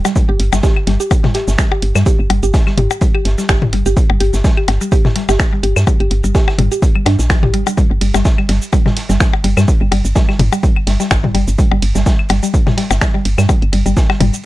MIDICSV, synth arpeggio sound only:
0, 0, Header, 1, 2, 480
1, 0, Start_track
1, 0, Key_signature, -2, "minor"
1, 0, Tempo, 476190
1, 158, Time_signature, 4, 2, 24, 8
1, 14567, End_track
2, 0, Start_track
2, 0, Title_t, "Synth arpeggio sound"
2, 0, Program_c, 0, 84
2, 49, Note_on_c, 0, 55, 104
2, 87, Note_off_c, 0, 55, 0
2, 158, Note_on_c, 0, 55, 79
2, 204, Note_off_c, 0, 55, 0
2, 289, Note_on_c, 0, 67, 104
2, 312, Note_off_c, 0, 67, 0
2, 529, Note_on_c, 0, 55, 79
2, 567, Note_off_c, 0, 55, 0
2, 637, Note_on_c, 0, 67, 109
2, 665, Note_off_c, 0, 67, 0
2, 876, Note_on_c, 0, 55, 76
2, 923, Note_off_c, 0, 55, 0
2, 1009, Note_on_c, 0, 67, 95
2, 1032, Note_off_c, 0, 67, 0
2, 1249, Note_on_c, 0, 55, 76
2, 1287, Note_off_c, 0, 55, 0
2, 1356, Note_on_c, 0, 67, 104
2, 1384, Note_off_c, 0, 67, 0
2, 1597, Note_on_c, 0, 55, 80
2, 1643, Note_off_c, 0, 55, 0
2, 1728, Note_on_c, 0, 67, 104
2, 1752, Note_off_c, 0, 67, 0
2, 1969, Note_on_c, 0, 55, 77
2, 2007, Note_off_c, 0, 55, 0
2, 2079, Note_on_c, 0, 67, 99
2, 2106, Note_off_c, 0, 67, 0
2, 2319, Note_on_c, 0, 55, 78
2, 2364, Note_off_c, 0, 55, 0
2, 2450, Note_on_c, 0, 67, 101
2, 2473, Note_off_c, 0, 67, 0
2, 2692, Note_on_c, 0, 55, 76
2, 2728, Note_off_c, 0, 55, 0
2, 2800, Note_on_c, 0, 67, 107
2, 2826, Note_off_c, 0, 67, 0
2, 3039, Note_on_c, 0, 55, 83
2, 3084, Note_off_c, 0, 55, 0
2, 3170, Note_on_c, 0, 67, 101
2, 3193, Note_off_c, 0, 67, 0
2, 3409, Note_on_c, 0, 55, 81
2, 3447, Note_off_c, 0, 55, 0
2, 3519, Note_on_c, 0, 67, 101
2, 3546, Note_off_c, 0, 67, 0
2, 3759, Note_on_c, 0, 55, 75
2, 3804, Note_off_c, 0, 55, 0
2, 3890, Note_on_c, 0, 67, 101
2, 3913, Note_off_c, 0, 67, 0
2, 4131, Note_on_c, 0, 55, 72
2, 4168, Note_off_c, 0, 55, 0
2, 4237, Note_on_c, 0, 67, 106
2, 4265, Note_off_c, 0, 67, 0
2, 4478, Note_on_c, 0, 55, 83
2, 4524, Note_off_c, 0, 55, 0
2, 4610, Note_on_c, 0, 67, 104
2, 4633, Note_off_c, 0, 67, 0
2, 4850, Note_on_c, 0, 55, 78
2, 4888, Note_off_c, 0, 55, 0
2, 4959, Note_on_c, 0, 67, 110
2, 4986, Note_off_c, 0, 67, 0
2, 5199, Note_on_c, 0, 55, 74
2, 5244, Note_off_c, 0, 55, 0
2, 5329, Note_on_c, 0, 67, 105
2, 5352, Note_off_c, 0, 67, 0
2, 5570, Note_on_c, 0, 55, 78
2, 5607, Note_off_c, 0, 55, 0
2, 5677, Note_on_c, 0, 67, 105
2, 5705, Note_off_c, 0, 67, 0
2, 5918, Note_on_c, 0, 55, 84
2, 5964, Note_off_c, 0, 55, 0
2, 6050, Note_on_c, 0, 67, 99
2, 6073, Note_off_c, 0, 67, 0
2, 6289, Note_on_c, 0, 55, 75
2, 6327, Note_off_c, 0, 55, 0
2, 6398, Note_on_c, 0, 67, 106
2, 6425, Note_off_c, 0, 67, 0
2, 6638, Note_on_c, 0, 55, 78
2, 6684, Note_off_c, 0, 55, 0
2, 6770, Note_on_c, 0, 67, 95
2, 6792, Note_off_c, 0, 67, 0
2, 7010, Note_on_c, 0, 55, 72
2, 7047, Note_off_c, 0, 55, 0
2, 7118, Note_on_c, 0, 62, 99
2, 7163, Note_off_c, 0, 62, 0
2, 7356, Note_on_c, 0, 53, 102
2, 7403, Note_off_c, 0, 53, 0
2, 7489, Note_on_c, 0, 67, 102
2, 7546, Note_off_c, 0, 67, 0
2, 7596, Note_on_c, 0, 55, 100
2, 7643, Note_off_c, 0, 55, 0
2, 7729, Note_on_c, 0, 55, 79
2, 7785, Note_off_c, 0, 55, 0
2, 7835, Note_on_c, 0, 55, 100
2, 7882, Note_off_c, 0, 55, 0
2, 8077, Note_on_c, 0, 55, 80
2, 8123, Note_off_c, 0, 55, 0
2, 8209, Note_on_c, 0, 55, 102
2, 8247, Note_off_c, 0, 55, 0
2, 8449, Note_on_c, 0, 55, 79
2, 8487, Note_off_c, 0, 55, 0
2, 8556, Note_on_c, 0, 55, 101
2, 8603, Note_off_c, 0, 55, 0
2, 8795, Note_on_c, 0, 55, 88
2, 8842, Note_off_c, 0, 55, 0
2, 8927, Note_on_c, 0, 55, 98
2, 8966, Note_off_c, 0, 55, 0
2, 9167, Note_on_c, 0, 55, 77
2, 9206, Note_off_c, 0, 55, 0
2, 9275, Note_on_c, 0, 55, 101
2, 9322, Note_off_c, 0, 55, 0
2, 9515, Note_on_c, 0, 55, 80
2, 9562, Note_off_c, 0, 55, 0
2, 9646, Note_on_c, 0, 55, 105
2, 9685, Note_off_c, 0, 55, 0
2, 9887, Note_on_c, 0, 55, 73
2, 9926, Note_off_c, 0, 55, 0
2, 9995, Note_on_c, 0, 55, 104
2, 10042, Note_off_c, 0, 55, 0
2, 10235, Note_on_c, 0, 55, 84
2, 10282, Note_off_c, 0, 55, 0
2, 10368, Note_on_c, 0, 55, 104
2, 10407, Note_off_c, 0, 55, 0
2, 10609, Note_on_c, 0, 55, 73
2, 10647, Note_off_c, 0, 55, 0
2, 10716, Note_on_c, 0, 55, 103
2, 10763, Note_off_c, 0, 55, 0
2, 10957, Note_on_c, 0, 55, 74
2, 11003, Note_off_c, 0, 55, 0
2, 11087, Note_on_c, 0, 55, 102
2, 11126, Note_off_c, 0, 55, 0
2, 11327, Note_on_c, 0, 55, 75
2, 11366, Note_off_c, 0, 55, 0
2, 11435, Note_on_c, 0, 55, 106
2, 11482, Note_off_c, 0, 55, 0
2, 11676, Note_on_c, 0, 55, 80
2, 11723, Note_off_c, 0, 55, 0
2, 11807, Note_on_c, 0, 55, 102
2, 11846, Note_off_c, 0, 55, 0
2, 12048, Note_on_c, 0, 55, 79
2, 12086, Note_off_c, 0, 55, 0
2, 12157, Note_on_c, 0, 55, 105
2, 12203, Note_off_c, 0, 55, 0
2, 12396, Note_on_c, 0, 55, 82
2, 12443, Note_off_c, 0, 55, 0
2, 12528, Note_on_c, 0, 55, 96
2, 12567, Note_off_c, 0, 55, 0
2, 12768, Note_on_c, 0, 55, 77
2, 12806, Note_off_c, 0, 55, 0
2, 12877, Note_on_c, 0, 55, 99
2, 12923, Note_off_c, 0, 55, 0
2, 13116, Note_on_c, 0, 55, 85
2, 13163, Note_off_c, 0, 55, 0
2, 13248, Note_on_c, 0, 55, 104
2, 13286, Note_off_c, 0, 55, 0
2, 13487, Note_on_c, 0, 55, 76
2, 13526, Note_off_c, 0, 55, 0
2, 13596, Note_on_c, 0, 55, 102
2, 13643, Note_off_c, 0, 55, 0
2, 13836, Note_on_c, 0, 55, 79
2, 13883, Note_off_c, 0, 55, 0
2, 13968, Note_on_c, 0, 55, 103
2, 14007, Note_off_c, 0, 55, 0
2, 14210, Note_on_c, 0, 55, 79
2, 14247, Note_off_c, 0, 55, 0
2, 14317, Note_on_c, 0, 55, 108
2, 14363, Note_off_c, 0, 55, 0
2, 14567, End_track
0, 0, End_of_file